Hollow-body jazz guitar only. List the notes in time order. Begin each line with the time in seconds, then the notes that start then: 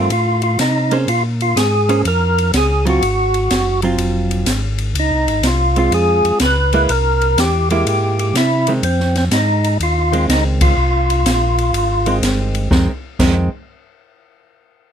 Already playing: C4
0.92 A#3 C#4 G#4 C5
1.89 A#3 C#4 G#4 C5
2.85 F#3 C4 F4
3.83 F#3 C4 F4
5.77 G#3 C4 F4
6.74 G#3 A#3 E4
7.71 G#3 A#3 E4
8.68 D#3 G#3 C4
10.12 D#3 G#3 C4
12.06 D#3 G#3 C4
12.71 D#3 G#3 C4
13.20 D#3 G#3 C4